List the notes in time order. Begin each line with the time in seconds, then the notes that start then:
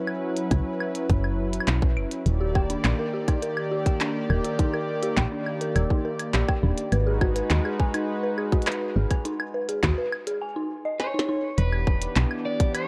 Already playing: F#3 C#4 E4 B4
0.08 claves
0.37 closed hi-hat
0.51 C#2, kick, closed hi-hat, claves
0.80 claves
0.95 closed hi-hat
1.09 F#1, kick, closed hi-hat
1.24 claves
1.53 closed hi-hat
1.60 claves
1.68 B1, clap, closed hi-hat
1.82 kick
1.97 F#1, claves
2.11 closed hi-hat
2.26 D#1 D#3 A#3 G4 D5, closed hi-hat
2.41 G4
2.55 G5, kick, claves
2.70 D4, closed hi-hat
2.84 A#1, clap, closed hi-hat, claves
2.99 A#4
3.13 G4
3.28 D#4, kick, closed hi-hat, claves
3.42 A#4, closed hi-hat
3.57 claves
3.72 G4
3.86 G5, kick, closed hi-hat
4.01 D4, clap, closed hi-hat, claves
4.30 D#1 A#4, claves
4.44 G4, closed hi-hat
4.59 D#4, kick, closed hi-hat
4.74 A#4, claves
5.03 G4, closed hi-hat
5.17 A#1 G5, kick, clap, closed hi-hat
5.32 D4
5.46 claves
5.61 A#4, closed hi-hat
5.76 D#1 G4, closed hi-hat, claves
5.90 D#4, kick
6.05 A#4
6.19 closed hi-hat, claves
6.34 A#1 G4, clap, closed hi-hat
6.48 G5, kick, claves
6.63 D#1 D4
6.77 closed hi-hat
6.92 G#1 G#3 D#4 F#4 B4, closed hi-hat, claves
7.07 G#4
7.21 F#4, kick, claves
7.36 B4, closed hi-hat
7.50 D#2, clap, closed hi-hat
7.65 G#4, claves
7.79 G#5, kick
7.94 D#4, closed hi-hat, claves
8.23 B4
8.38 G#4, claves
8.52 F#4, kick, closed hi-hat
8.62 closed hi-hat
8.67 B4, clap, closed hi-hat, claves
8.72 closed hi-hat
8.96 G#1 G#4
9.10 G#5, kick, closed hi-hat, claves
9.25 D#4, closed hi-hat
9.40 claves
9.54 B4
9.69 G#4, closed hi-hat
9.83 D#2 F#4, kick, clap, closed hi-hat, claves
9.98 B4
10.12 claves
10.27 G#4, closed hi-hat
10.42 G#5
10.56 D#4
10.85 D#5
11.00 C#5 G#5, snare
11.14 D#4
11.19 snare
11.29 D#4
11.58 E1 E3 B3 D4 G4 B4, closed hi-hat
11.73 claves
11.87 kick
12.02 closed hi-hat
12.16 B1, clap, closed hi-hat
12.31 claves
12.45 D5
12.60 kick, closed hi-hat
12.75 C#5, closed hi-hat, claves